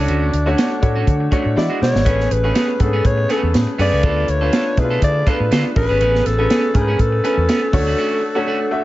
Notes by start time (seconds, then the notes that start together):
Already playing: A3 D4 F#4 C#5
0.08 D2 A3 C#4 F#4, closed hi-hat
0.33 D2, muted clean electric guitar stroke, closed hi-hat
0.46 A3 C#4 D4 F#4 C#5
0.57 A3 C#4 F#4, snare, closed hi-hat
0.71 muted clean electric guitar stroke
0.82 A2 A3 D4 F#4 C#5, muted clean electric guitar stroke, kick, closed hi-hat
0.96 A3 C#4 F#4
1.07 D3, muted clean electric guitar stroke, kick, closed hi-hat
1.20 muted clean electric guitar stroke
1.32 A3 C#4 D4 F#4 C#5, kick, closed hi-hat
1.45 A2, muted clean electric guitar stroke
1.56 E3 G#3 E4 F#4 D5, muted clean electric guitar stroke, snare
1.70 G#3 D4 F#4
1.80 B2 G#3 E4 F#4 C#5 D5, muted clean electric guitar stroke, snare
1.94 G#1, muted clean electric guitar stroke, snare
2.05 A1 A3 B3 C#4 G#4 B4, kick, closed hi-hat
2.20 snare
2.30 A1 B4, muted clean electric guitar stroke, closed hi-hat
2.43 A3 B3 C#4 G#4 B4
2.55 B3 C#4 G#4, snare, closed hi-hat
2.69 muted clean electric guitar stroke
2.80 G#2 A3 B3 G#4 A4 B4, muted clean electric guitar stroke, kick, closed hi-hat
2.86 C#4
2.93 B3 C#4 G#4
3.04 A2 C#5, muted clean electric guitar stroke, kick, closed hi-hat
3.18 muted clean electric guitar stroke
3.29 A3 B3 C#4 G#4 A4, snare, closed hi-hat
3.36 B4
3.43 E2, muted clean electric guitar stroke
3.54 A2, muted clean electric guitar stroke, snare, closed hi-hat
3.67 muted clean electric guitar stroke
3.78 F#2 A3 B3 C#4 G#4 B4 D5, open hi-hat
3.92 C#2 B3 C#4 G#4
4.03 D2 A3 B3 D4 F4 A4 B4, kick, closed hi-hat
4.28 D2 C#5, muted clean electric guitar stroke, closed hi-hat
4.41 A3 B3 D4 F4 A4 B4
4.53 B3 F4 A4, snare, closed hi-hat
4.66 muted clean electric guitar stroke
4.77 B2 A3 D4 E4 G#4 B4, muted clean electric guitar stroke, kick, closed hi-hat
4.84 F4
4.90 B3 F4 A4
5.02 D3 D5, muted clean electric guitar stroke, kick, closed hi-hat
5.15 muted clean electric guitar stroke
5.26 A3 B3 D4 F4 A4 B4, kick, closed hi-hat
5.40 A2, muted clean electric guitar stroke
5.51 D3 B3 F4 A4, snare, closed hi-hat
5.65 muted clean electric guitar stroke
5.75 A1 A3 C#4 G#4 A4 B4, muted clean electric guitar stroke, kick, open hi-hat
5.83 B4
5.89 G#1 B3 C#4 G#4
6.01 A1 B3 C#4 G#4, closed hi-hat
6.15 snare
6.25 A1 A4, muted clean electric guitar stroke, snare, closed hi-hat
6.38 A3 B3 C#4 G#4 B4
6.50 B3 C#4 G#4, snare, closed hi-hat
6.63 muted clean electric guitar stroke
6.74 G#2 A3 C#4 G#4 A#4, muted clean electric guitar stroke, kick, closed hi-hat
6.81 B4
6.88 B3 C#4 G#4
6.99 A2 A4, muted clean electric guitar stroke, kick, closed hi-hat
7.12 muted clean electric guitar stroke
7.24 A3 B3 C#4 G#4 B4 G#5, closed hi-hat
7.37 E2, muted clean electric guitar stroke
7.49 B3 C#4 G#4, snare, closed hi-hat
7.62 muted clean electric guitar stroke
7.73 D2 A3 D4 F#4 C#5, muted clean electric guitar stroke, kick, open hi-hat
7.87 A3 C#4 F#4
7.98 A3 C#4 F#4
8.22 muted clean electric guitar stroke
8.35 A3 C#4 D4 F#4 C#5
8.47 A3 C#4 F#4
8.60 muted clean electric guitar stroke
8.71 A3 D4 F#4 E5, muted clean electric guitar stroke